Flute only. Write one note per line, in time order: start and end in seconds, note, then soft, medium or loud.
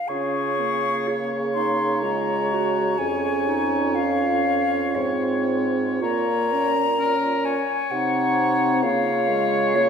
0.08 1.30 C#6 medium
1.54 2.02 C6 medium
2.02 3.00 A#5 medium
2.98 3.96 G#5 medium
3.95 4.97 F5 medium
4.95 5.72 C#5 medium
6.02 7.47 A#5 loud
7.45 7.92 G#5 medium
7.91 8.85 F#5 medium
8.83 9.77 F5 medium
9.76 9.89 C#5 medium